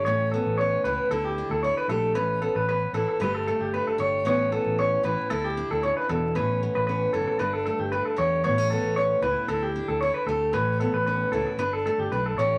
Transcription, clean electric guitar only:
\new Staff \with { instrumentName = "Clean electric guitar" } { \time 4/4 \key a \mixolydian \tempo 4 = 114 cis''8 a'8 cis''8 b'8 a'16 g'8 a'16 cis''16 b'16 a'8 | b'8 a'16 b'16 b'8 a'16 a'16 b'16 a'16 a'16 g'16 b'16 a'16 cis''8 | cis''8 a'8 cis''8 b'8 a'16 g'8 a'16 cis''16 b'16 a'8 | b'8 r16 b'16 b'8 a'16 a'16 b'16 a'16 a'16 g'16 b'16 a'16 cis''8 |
cis''8 a'8 cis''8 b'8 a'16 g'8 a'16 cis''16 b'16 a'8 | b'8 a'16 b'16 b'8 a'16 r16 b'16 a'16 a'16 g'16 b'16 a'16 cis''8 | }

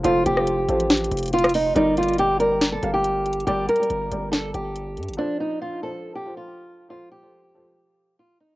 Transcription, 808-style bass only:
\new Staff \with { instrumentName = "808-style bass" } { \clef bass \time 4/4 \key g \minor \tempo 4 = 140 f,,8 f,,4 a,,4 f,,4. | g,,2~ g,,8 g,,4. | g,,8 r8 g,,8 g,,4 g,,4 g,16 g,,16 | r1 |
r1 | }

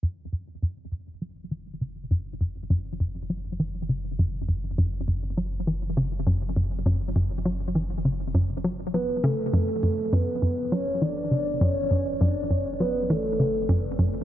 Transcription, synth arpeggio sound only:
\new Staff \with { instrumentName = "Synth arpeggio sound" } { \clef bass \time 4/4 \key fis \minor \tempo 4 = 101 fis,8 fis,8 fis,8 fis,8 fis8 e8 cis8 fis,8 | fis,8 fis,8 fis,8 fis8 e8 cis8 fis,8 fis,8 | fis,8 fis,8 fis8 e8 cis8 fis,8 fis,8 fis,8 | fis,8 fis8 e8 cis8 fis,8 fis8 fis8 cis8 |
fis,8 fis,8 fis,8 fis,8 fis8 e8 cis8 fis,8 | fis,8 fis,8 fis,8 fis8 e8 cis8 fis,8 fis,8 | }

